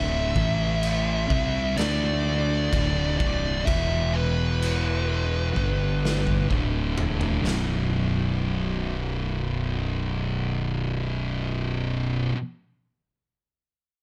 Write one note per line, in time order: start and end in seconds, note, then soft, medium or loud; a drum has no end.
0.00 0.32 D1 medium
0.00 0.33 D2 loud
0.00 0.34 A2 loud
0.00 0.34 D3 loud
0.00 0.37 D4 medium
0.00 0.36 A4 medium
0.00 0.36 E5 medium
0.00 1.84 E5 loud
0.35 1.26 A1 loud
0.35 1.28 A2 medium
0.35 1.29 E3 medium
0.35 1.29 A3 loud
0.35 3.64 A3 medium
0.35 3.63 E4 medium
0.35 1.30 B4 medium
0.35 kick loud
0.83 crash medium
1.29 1.74 C2 medium
1.29 1.75 C3 medium
1.29 3.64 D3 medium
1.29 1.76 G3 medium
1.29 1.76 C4 medium
1.29 kick loud
1.77 2.68 D2 loud
1.77 2.70 D3 medium
1.77 2.70 A3 medium
1.77 2.71 D4 loud
1.77 3.17 D5 loud
1.77 snare loud
1.77 crash medium
2.71 3.17 D1 loud
2.71 3.17 D2 medium
2.71 3.18 A2 loud
2.71 3.18 D3 loud
2.71 kick loud
2.71 crash medium
3.18 3.64 C1 medium
3.18 3.65 C2 medium
3.18 3.65 G2 loud
3.18 3.65 C3 medium
3.18 3.67 D5 medium
3.18 kick loud
3.65 5.52 E1 loud
3.65 5.54 E2 medium
3.65 5.54 B2 loud
3.65 5.54 E3 loud
3.65 5.54 E3 medium
3.65 5.55 B3 medium
3.65 5.54 F#4 loud
3.65 4.15 E5 loud
3.65 kick loud
3.65 crash medium
4.14 6.46 B4 medium
4.62 crash medium
5.55 6.46 G1 loud
5.55 6.48 G2 medium
5.55 6.49 D3 loud
5.55 6.49 G3 medium
5.55 6.49 G3 loud
5.55 6.49 D4 medium
5.55 6.50 A4 medium
5.55 kick medium
6.05 snare medium
6.27 kick medium
6.49 7.41 D1 medium
6.49 7.42 D2 medium
6.49 7.43 A2 medium
6.49 7.43 D3 loud
6.49 7.44 D3 medium
6.49 7.44 A3 medium
6.49 7.44 E4 medium
6.49 kick medium
6.98 floor tom loud
7.21 floor tom medium
7.43 12.30 B0 loud
7.43 12.33 B1 loud
7.43 12.35 F#2 loud
7.43 11.99 B2 medium
7.43 12.37 B2 loud
7.43 11.99 F#3 medium
7.47 12.00 B3 loud
7.47 snare loud